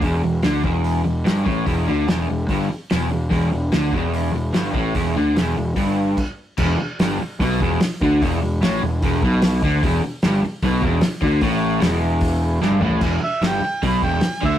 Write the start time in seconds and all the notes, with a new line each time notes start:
0.02 E1 E2, kick, open hi-hat
0.24 E1 E2
0.43 D2 D3, snare, open hi-hat
0.63 E1 E2, kick
0.84 open hi-hat
1.04 E1 E2
1.25 G1 G2, snare, open hi-hat
1.44 A1 A2, kick
1.65 E1 E2, kick, open hi-hat
1.87 D2 D3
2.07 E1 E2, snare, open hi-hat
2.29 E1 E2
2.48 G1 G2, kick, open hi-hat
2.71 muted overdriven electric guitar stroke, muted picked electric bass stroke
2.90 E1 E2, snare, open hi-hat
3.12 E1 E2
3.30 E1 E2, kick, open hi-hat
3.52 E1 E2
3.72 D2 D3, snare, open hi-hat
3.92 E1 E2, kick
4.14 open hi-hat
4.32 E1 E2
4.54 G1 G2, snare, open hi-hat
4.74 A1 A2, kick
4.95 E1 E2, kick, open hi-hat
5.16 D2 D3
5.35 E1 E2, snare, open hi-hat
5.57 E1 E2
5.76 G1 G2, kick, open hi-hat
6.17 kick, crash
6.57 E1 E2, kick, crash
6.79 muted picked electric bass stroke, muted overdriven electric guitar stroke
6.99 G1 G2, snare, open hi-hat
7.21 muted picked electric bass stroke, muted overdriven electric guitar stroke
7.39 B1 B2, kick, open hi-hat
7.61 E1 E2, kick
7.80 muted picked electric bass stroke, muted overdriven electric guitar stroke, snare, open hi-hat
8.01 D2 D3, kick
8.22 E1 E2, kick, open hi-hat
8.42 E1 E2
8.61 A1 A2, snare, open hi-hat
8.82 E1 E2
9.02 E1 E2, kick, open hi-hat
9.22 B1 B2, kick
9.42 snare, open hi-hat
9.63 D2 D3, kick
9.83 E1 E2, kick, open hi-hat
10.02 muted picked electric bass stroke, muted overdriven electric guitar stroke
10.22 G1 G2, snare, open hi-hat
10.44 muted picked electric bass stroke, muted overdriven electric guitar stroke
10.62 B1 B2, kick, open hi-hat
10.82 E1 E2, kick
11.01 muted picked electric bass stroke, muted overdriven electric guitar stroke, snare, open hi-hat
11.22 D2 D3, kick
11.41 A1 A2, kick, open hi-hat
11.80 E1 E2, snare, open hi-hat
12.21 kick, open hi-hat
12.61 G1 G2, snare
12.71 high tom
12.80 A1 A2, mid tom
12.91 floor tom
13.01 E1 E2, kick, crash
13.21 E5, muted picked electric bass stroke, muted overdriven electric guitar stroke
13.41 G1 G2, snare, open hi-hat
13.47 G5
13.62 muted picked electric bass stroke, muted overdriven electric guitar stroke
13.83 B1 B2 B5, kick, open hi-hat
14.02 E1 E2 G5, kick
14.21 muted picked electric bass stroke, muted overdriven electric guitar stroke, snare, open hi-hat
14.42 D2 D3 E5, kick